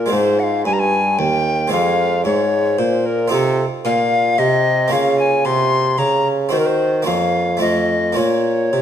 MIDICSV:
0, 0, Header, 1, 4, 480
1, 0, Start_track
1, 0, Key_signature, -4, "minor"
1, 0, Tempo, 532860
1, 112, Time_signature, 3, 2, 24, 8
1, 2992, Key_signature, -5, "minor"
1, 5872, Tempo, 550964
1, 7875, End_track
2, 0, Start_track
2, 0, Title_t, "Recorder"
2, 0, Program_c, 0, 74
2, 0, Note_on_c, 0, 70, 85
2, 113, Note_on_c, 0, 72, 96
2, 126, Note_off_c, 0, 70, 0
2, 356, Note_on_c, 0, 78, 83
2, 370, Note_off_c, 0, 72, 0
2, 391, Note_on_c, 0, 77, 90
2, 400, Note_off_c, 0, 78, 0
2, 585, Note_off_c, 0, 77, 0
2, 590, Note_on_c, 0, 80, 100
2, 658, Note_on_c, 0, 82, 81
2, 672, Note_off_c, 0, 80, 0
2, 716, Note_on_c, 0, 80, 107
2, 729, Note_off_c, 0, 82, 0
2, 1066, Note_on_c, 0, 79, 109
2, 1080, Note_off_c, 0, 80, 0
2, 1543, Note_off_c, 0, 79, 0
2, 1549, Note_on_c, 0, 77, 109
2, 2020, Note_off_c, 0, 77, 0
2, 2027, Note_on_c, 0, 73, 113
2, 2508, Note_on_c, 0, 72, 96
2, 2522, Note_off_c, 0, 73, 0
2, 2752, Note_on_c, 0, 70, 97
2, 2766, Note_off_c, 0, 72, 0
2, 2979, Note_off_c, 0, 70, 0
2, 2984, Note_on_c, 0, 69, 105
2, 3293, Note_off_c, 0, 69, 0
2, 3469, Note_on_c, 0, 77, 115
2, 3952, Note_on_c, 0, 75, 113
2, 3965, Note_off_c, 0, 77, 0
2, 4433, Note_on_c, 0, 77, 104
2, 4447, Note_off_c, 0, 75, 0
2, 4673, Note_off_c, 0, 77, 0
2, 4677, Note_on_c, 0, 80, 102
2, 4914, Note_on_c, 0, 84, 113
2, 4928, Note_off_c, 0, 80, 0
2, 5392, Note_on_c, 0, 82, 97
2, 5406, Note_off_c, 0, 84, 0
2, 5656, Note_off_c, 0, 82, 0
2, 5872, Note_on_c, 0, 72, 98
2, 5924, Note_off_c, 0, 72, 0
2, 5935, Note_on_c, 0, 70, 88
2, 5995, Note_on_c, 0, 72, 98
2, 6009, Note_off_c, 0, 70, 0
2, 6336, Note_off_c, 0, 72, 0
2, 6342, Note_on_c, 0, 77, 89
2, 6810, Note_off_c, 0, 77, 0
2, 6822, Note_on_c, 0, 75, 96
2, 7308, Note_on_c, 0, 73, 91
2, 7321, Note_off_c, 0, 75, 0
2, 7875, Note_off_c, 0, 73, 0
2, 7875, End_track
3, 0, Start_track
3, 0, Title_t, "Harpsichord"
3, 0, Program_c, 1, 6
3, 53, Note_on_c, 1, 56, 61
3, 69, Note_on_c, 1, 60, 54
3, 81, Note_on_c, 1, 65, 52
3, 109, Note_on_c, 1, 44, 57
3, 546, Note_off_c, 1, 56, 0
3, 553, Note_off_c, 1, 44, 0
3, 554, Note_off_c, 1, 60, 0
3, 589, Note_on_c, 1, 43, 62
3, 1036, Note_off_c, 1, 43, 0
3, 1070, Note_on_c, 1, 39, 62
3, 1504, Note_off_c, 1, 65, 0
3, 1509, Note_on_c, 1, 56, 60
3, 1518, Note_off_c, 1, 39, 0
3, 1523, Note_on_c, 1, 60, 57
3, 1536, Note_on_c, 1, 65, 58
3, 1548, Note_on_c, 1, 41, 60
3, 1993, Note_off_c, 1, 41, 0
3, 2028, Note_on_c, 1, 44, 67
3, 2460, Note_off_c, 1, 56, 0
3, 2467, Note_off_c, 1, 60, 0
3, 2474, Note_off_c, 1, 44, 0
3, 2510, Note_on_c, 1, 46, 64
3, 2946, Note_off_c, 1, 65, 0
3, 2951, Note_on_c, 1, 60, 57
3, 2954, Note_off_c, 1, 46, 0
3, 2965, Note_on_c, 1, 63, 62
3, 2980, Note_on_c, 1, 65, 61
3, 2992, Note_on_c, 1, 48, 70
3, 3272, Note_off_c, 1, 48, 0
3, 3467, Note_on_c, 1, 46, 70
3, 3915, Note_off_c, 1, 46, 0
3, 3948, Note_on_c, 1, 48, 62
3, 4378, Note_off_c, 1, 60, 0
3, 4385, Note_off_c, 1, 63, 0
3, 4392, Note_off_c, 1, 65, 0
3, 4394, Note_on_c, 1, 58, 59
3, 4395, Note_off_c, 1, 48, 0
3, 4410, Note_on_c, 1, 61, 62
3, 4422, Note_on_c, 1, 65, 61
3, 4436, Note_on_c, 1, 49, 67
3, 4878, Note_off_c, 1, 49, 0
3, 4909, Note_on_c, 1, 48, 66
3, 5354, Note_off_c, 1, 48, 0
3, 5386, Note_on_c, 1, 49, 67
3, 5818, Note_off_c, 1, 58, 0
3, 5826, Note_off_c, 1, 61, 0
3, 5832, Note_off_c, 1, 65, 0
3, 5835, Note_off_c, 1, 49, 0
3, 5845, Note_on_c, 1, 60, 56
3, 5858, Note_on_c, 1, 66, 60
3, 5872, Note_on_c, 1, 51, 65
3, 6307, Note_off_c, 1, 51, 0
3, 6313, Note_on_c, 1, 58, 53
3, 6315, Note_off_c, 1, 60, 0
3, 6321, Note_off_c, 1, 66, 0
3, 6326, Note_on_c, 1, 61, 55
3, 6337, Note_on_c, 1, 65, 57
3, 6353, Note_on_c, 1, 41, 61
3, 6788, Note_on_c, 1, 57, 51
3, 6791, Note_off_c, 1, 41, 0
3, 6791, Note_off_c, 1, 58, 0
3, 6798, Note_off_c, 1, 61, 0
3, 6803, Note_off_c, 1, 65, 0
3, 6803, Note_on_c, 1, 60, 50
3, 6814, Note_on_c, 1, 65, 51
3, 6826, Note_on_c, 1, 41, 56
3, 7272, Note_on_c, 1, 58, 48
3, 7273, Note_off_c, 1, 41, 0
3, 7274, Note_off_c, 1, 57, 0
3, 7281, Note_off_c, 1, 60, 0
3, 7285, Note_on_c, 1, 61, 52
3, 7287, Note_off_c, 1, 65, 0
3, 7298, Note_on_c, 1, 65, 49
3, 7308, Note_on_c, 1, 46, 55
3, 7759, Note_off_c, 1, 46, 0
3, 7799, Note_on_c, 1, 48, 55
3, 7875, Note_off_c, 1, 48, 0
3, 7875, Note_off_c, 1, 58, 0
3, 7875, Note_off_c, 1, 61, 0
3, 7875, Note_off_c, 1, 65, 0
3, 7875, End_track
4, 0, Start_track
4, 0, Title_t, "Bassoon"
4, 0, Program_c, 2, 70
4, 0, Note_on_c, 2, 46, 64
4, 102, Note_off_c, 2, 46, 0
4, 108, Note_on_c, 2, 44, 80
4, 588, Note_on_c, 2, 43, 77
4, 601, Note_off_c, 2, 44, 0
4, 1072, Note_on_c, 2, 39, 70
4, 1085, Note_off_c, 2, 43, 0
4, 1550, Note_off_c, 2, 39, 0
4, 1555, Note_on_c, 2, 41, 87
4, 2030, Note_on_c, 2, 44, 79
4, 2043, Note_off_c, 2, 41, 0
4, 2508, Note_off_c, 2, 44, 0
4, 2513, Note_on_c, 2, 46, 78
4, 2984, Note_on_c, 2, 48, 91
4, 2997, Note_off_c, 2, 46, 0
4, 3299, Note_off_c, 2, 48, 0
4, 3466, Note_on_c, 2, 46, 80
4, 3916, Note_off_c, 2, 46, 0
4, 3955, Note_on_c, 2, 48, 76
4, 4425, Note_off_c, 2, 48, 0
4, 4429, Note_on_c, 2, 49, 86
4, 4901, Note_off_c, 2, 49, 0
4, 4912, Note_on_c, 2, 48, 80
4, 5382, Note_off_c, 2, 48, 0
4, 5389, Note_on_c, 2, 49, 79
4, 5863, Note_off_c, 2, 49, 0
4, 5873, Note_on_c, 2, 51, 83
4, 6333, Note_off_c, 2, 51, 0
4, 6342, Note_on_c, 2, 41, 71
4, 6811, Note_off_c, 2, 41, 0
4, 6822, Note_on_c, 2, 41, 66
4, 7296, Note_off_c, 2, 41, 0
4, 7306, Note_on_c, 2, 46, 73
4, 7783, Note_off_c, 2, 46, 0
4, 7793, Note_on_c, 2, 48, 62
4, 7875, Note_off_c, 2, 48, 0
4, 7875, End_track
0, 0, End_of_file